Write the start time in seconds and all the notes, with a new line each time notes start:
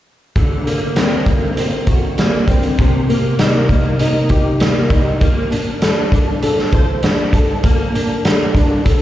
0.36 D3, kick, closed hi-hat
0.67 A#3, closed hi-hat
0.96 C4, snare, closed hi-hat
1.26 A#3, kick, closed hi-hat
1.56 C4, closed hi-hat
1.87 F#4, kick, closed hi-hat
2.18 A#3, snare, closed hi-hat
2.48 C4, kick, closed hi-hat
2.63 closed hi-hat
2.78 C3, kick, closed hi-hat
3.09 A#3, closed hi-hat
3.39 D#4, snare, closed hi-hat
3.69 A#3, kick, closed hi-hat
3.99 D#4, closed hi-hat
4.29 G4, kick, closed hi-hat
4.60 A#3, snare, closed hi-hat
4.90 D#4, kick, closed hi-hat
5.21 A#3, kick, closed hi-hat
5.51 D4, closed hi-hat
5.82 A4, snare, closed hi-hat
6.12 D4, kick, closed hi-hat
6.43 A4, closed hi-hat
6.59 snare
6.72 C5, kick, closed hi-hat
7.03 D4, snare, closed hi-hat
7.33 A4, kick, closed hi-hat
7.63 A#3, kick, closed hi-hat
7.94 D4, closed hi-hat
8.24 A4, snare, closed hi-hat
8.55 D4, kick, closed hi-hat
8.85 A4, kick, closed hi-hat